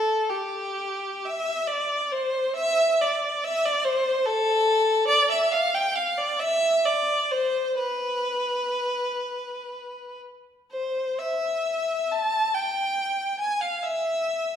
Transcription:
Already playing: A4
0.30 G4
1.25 E5
1.67 D5
2.12 C5
2.56 E5
3.01 D5
3.44 E5
3.65 D5
3.85 C5
4.26 A4
5.08 D5
5.31 E5
5.52 F5
5.74 G5
5.95 F5
6.18 D5
6.39 E5
6.86 D5
7.31 C5
7.78 B4
10.72 C5
11.19 E5
12.12 A5
12.55 G5
13.40 G#5
13.62 F5
13.83 E5

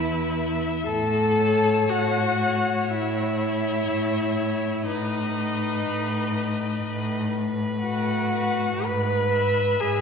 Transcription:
Already playing: E2 E4 B4 E5
0.86 A2 A4 A5
1.39 C#5
1.89 A2 F#4 F#5
2.39 C#5
2.88 A2 E4 E5
3.37 C#5
3.88 A2
4.37 C#5
4.86 A2 D#4 B4 D#5
5.35 B4
5.85 A2
6.34 B4
6.83 A2
7.33 B4
7.82 A2 F#4 F#5
8.34 B4
8.84 G#2 B4 B5
9.33 E5
9.79 G#2 G#4 G#5

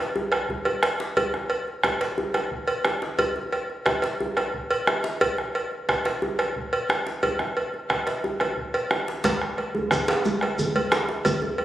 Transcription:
0.16 djembe bass
0.32 bombo rim, cowbell, djembe bass
0.49 bombo rim, bombo low, djembe bass
0.65 bombo rim, cowbell, djembe bass
0.83 bombo rim, cowbell, djembe slap
1.00 djembe slap
1.17 bombo rim, bombo low, cowbell, djembe bass
1.34 bombo rim, djembe tone
1.50 bombo rim, cowbell
1.67 djembe slap
1.84 bombo rim, bombo low, cowbell, djembe tone
2.01 cowbell, djembe slap
2.18 djembe bass
2.34 bombo rim, cowbell, djembe tone
2.51 bombo low
2.67 cowbell
2.84 bombo rim, cowbell, djembe tone
3.02 bombo rim, djembe slap
3.19 bombo rim, bombo low, cowbell, djembe bass
3.36 djembe tone
3.52 bombo rim, cowbell, djembe slap
3.70 djembe slap
3.86 bombo rim, bombo low, cowbell, djembe tone
4.02 cowbell, djembe slap
4.21 djembe bass
4.37 bombo rim, cowbell, djembe tone
4.54 bombo low
4.71 cowbell
4.87 bombo rim, cowbell, djembe tone
5.04 bombo rim, djembe slap
5.21 bombo rim, bombo low, cowbell, djembe bass
5.38 bombo rim, djembe tone
5.55 bombo rim, cowbell, djembe slap
5.72 djembe slap
5.89 bombo rim, bombo low, cowbell, djembe tone
6.05 cowbell, djembe slap
6.22 djembe bass
6.39 bombo rim, cowbell, djembe tone
6.56 bombo low
6.73 cowbell
6.89 bombo rim, cowbell, djembe tone
7.07 djembe slap
7.23 bombo low, cowbell, djembe bass
7.39 bombo rim, djembe slap, djembe tone
7.57 bombo rim, cowbell
7.74 djembe slap
7.90 bombo rim, bombo low, cowbell, djembe tone
8.07 cowbell, djembe slap
8.24 bombo rim, djembe bass
8.40 bombo rim, cowbell, djembe slap, djembe tone
8.57 bombo low
8.74 cowbell, djembe slap
8.91 bombo rim, cowbell, djembe slap, djembe tone
9.07 bombo rim, djembe slap
9.24 bombo rim, bombo low, cowbell, djembe slap, high conga, low conga, djembe bass, shekere
9.42 bombo rim
9.58 bombo rim, cowbell, djembe slap
9.75 djembe slap, high conga, djembe bass
9.91 bombo rim, bombo low, cowbell, djembe tone, low conga, shekere
10.08 cowbell, djembe slap
10.25 high conga, djembe bass, shekere
10.41 bombo rim, cowbell, high conga, djembe tone
10.58 bombo low, high conga, low conga, djembe bass, shekere
10.75 cowbell, high conga
10.92 bombo rim, cowbell, djembe slap, djembe tone, shekere
11.09 bombo rim, djembe slap
11.25 bombo rim, bombo low, cowbell, high conga, djembe bass, low conga, shekere
11.42 djembe tone, djembe bass
11.58 bombo rim, cowbell, djembe slap

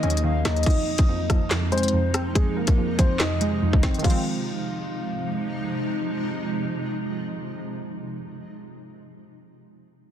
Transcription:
Already playing: C#3 D#3 F#3 A#3 D#4 D#5
0.03 D#2 C#4, closed hi-hat
0.10 closed hi-hat
0.17 closed hi-hat
0.24 D#3 F5
0.45 D#2 D#4 D#5, cross-stick, snare, closed hi-hat
0.56 closed hi-hat
0.63 F2 C3 F3 G#3 D#4 D#5, kick, closed hi-hat, crash
0.66 D#4, closed hi-hat
0.70 closed hi-hat
0.98 kick, closed hi-hat
1.09 F2
1.30 F3, kick, cross-stick, closed hi-hat
1.51 F2, snare, clap, closed hi-hat
1.72 G#3 C4 C5, closed hi-hat
1.78 closed hi-hat
1.83 closed hi-hat
1.88 closed hi-hat
1.93 F2
2.14 C4, cross-stick, closed hi-hat
2.35 F2 G#3 G#4, kick, closed hi-hat
2.56 A#3 A#4
2.67 kick, closed hi-hat
2.78 F2
2.99 F3 C4 C5, kick, closed hi-hat
3.20 F2 D#4 D#5, snare, clap, closed hi-hat
3.41 G#3, closed hi-hat
3.62 F2
3.73 kick
3.83 C4, kick, snare, closed hi-hat
3.94 D#3, closed hi-hat
3.99 F3, closed hi-hat
4.04 C3 F3 G#3 D#4 F4, kick, closed hi-hat, crash
4.10 C4, closed hi-hat

